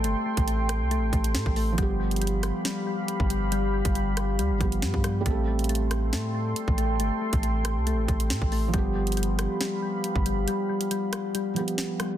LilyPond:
<<
  \new Staff \with { instrumentName = "Ambient pad" } { \time 4/4 \key g \mixolydian \tempo 4 = 138 <a' g'' c'''>1 | <g' f'' b''>1~ | <g' f'' b''>1 | <a' g'' c'''>1~ |
<a' g'' c'''>1 | <g' f'' b''>1~ | <g' f'' b''>1 | }
  \new Staff \with { instrumentName = "Felt piano" } { \time 4/4 \key g \mixolydian <g c' a'>1 | <f b g'>1~ | <f b g'>2~ <f b g'>8 <f b g'>4. | <g c' a'>1~ |
<g c' a'>1 | <f b g'>1~ | <f b g'>2~ <f b g'>8 <f b g'>4. | }
  \new Staff \with { instrumentName = "Synth keys" } { \clef bass \time 4/4 \key g \mixolydian a8 a8 a4 a8 a4 a8 | g8 g8 g4 g8 g4 g8 | g8 g8 g4 g8 g4 g8 | a8 a8 a4 a8 a4 a8 |
a8 a8 a4 a8 a4 a8 | g8 g8 g4 g8 g4 g8 | g8 g8 g4 g8 g4 g8 | }
  \new Staff \with { instrumentName = "808-style bass" } { \clef bass \time 4/4 \key g \mixolydian g,,16 r8 a,,4 c,16. a,,16. a,,8 a,16 a,,8. | r2. r16 g,,8.~ | g,,8. g,,4~ g,,16 d,16 g,,16 g,,8 g,16 g,8. | a,,2 a,4 r16 a,,8. |
g,,16 r8 a,,4 c,16. a,,16. a,,8 a,16 a,,8. | g,,4.~ g,,16 r4. g,,8. | r1 | }
  \new DrumStaff \with { instrumentName = "Drums" } \drummode { \time 4/4 hh8. <hh bd>16 hh8 <hh ss>8 hh8 <hh bd>16 hh16 sn16 bd16 hho8 | <hh bd>8. hh32 hh32 hh32 hh16. <hh ss>8 sn4 hh16 bd16 hh8 | hh8. <hh bd>16 hh8 <hh ss>8 hh8 <hh bd>16 hh16 sn16 bd16 <hh ss>8 | <hh bd>8. hh32 hh32 hh32 hh16. <hh ss>8 sn4 hh16 bd16 hh8 |
hh8. <hh bd>16 hh8 <hh ss>8 hh8 <hh bd>16 hh16 sn16 bd16 hho8 | <hh bd>8. hh32 hh32 hh32 hh16. <hh ss>8 sn4 hh16 bd16 hh8 | hh8. hh16 hh8 <hh ss>8 hh8 hh16 hh16 sn8 <hh ss>8 | }
>>